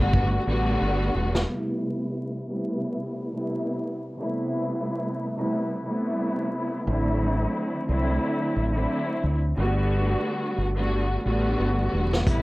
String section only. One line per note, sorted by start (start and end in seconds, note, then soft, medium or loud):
0.00 0.42 D3 loud
0.00 0.42 G3 medium
0.00 0.43 A3 medium
0.00 0.43 B3 medium
0.00 0.44 F#4 loud
0.46 1.41 D3 loud
0.46 1.41 G3 medium
0.46 1.41 A3 medium
0.46 1.42 B3 medium
0.46 1.42 F#4 loud
1.47 2.42 C3 medium
1.47 2.42 G3 medium
1.47 2.42 A3 medium
1.47 2.43 B3 medium
1.47 2.43 E4 loud
2.48 3.27 C3 medium
2.48 3.28 G3 medium
2.48 3.28 A3 medium
2.48 3.28 B3 medium
2.48 3.29 E4 loud
3.33 3.96 C3 medium
3.33 3.96 G3 medium
3.33 3.96 A3 medium
3.33 3.97 B3 medium
3.33 3.97 E4 loud
4.17 5.27 C3 loud
4.17 5.28 G3 medium
4.17 5.28 A3 medium
4.17 5.28 B3 medium
4.17 5.29 E4 loud
5.36 5.82 C3 loud
5.36 5.82 G3 medium
5.36 5.82 A3 medium
5.36 5.83 B3 medium
5.36 5.83 E4 loud
5.86 6.80 C3 medium
5.86 6.81 G3 medium
5.86 6.81 A3 medium
5.86 6.81 B3 medium
5.86 6.82 E4 loud
6.87 7.81 D3 loud
6.87 7.82 F#3 medium
6.87 7.82 A3 medium
6.87 7.82 C4 medium
6.87 7.83 E4 loud
7.87 8.67 D3 loud
7.87 8.67 F#3 medium
7.87 8.68 A3 medium
7.87 8.68 C4 medium
7.87 8.68 E4 loud
8.73 9.35 D3 medium
8.73 9.36 F#3 medium
8.73 9.36 A3 medium
8.73 9.36 C4 medium
8.73 9.37 E4 loud
9.57 10.67 D3 loud
9.57 10.67 G3 medium
9.57 10.67 A3 medium
9.57 10.68 B3 medium
9.57 10.68 F#4 loud
10.75 11.21 D3 medium
10.75 11.21 G3 medium
10.75 11.22 A3 medium
10.75 11.22 B3 medium
10.75 11.22 F#4 loud
11.25 12.19 D3 loud
11.25 12.20 G3 medium
11.25 12.20 A3 medium
11.25 12.21 B3 medium
11.25 12.21 F#4 loud
12.26 12.42 C3 loud
12.26 12.42 G3 medium
12.26 12.42 A3 medium
12.26 12.42 B3 loud
12.26 12.42 E4 loud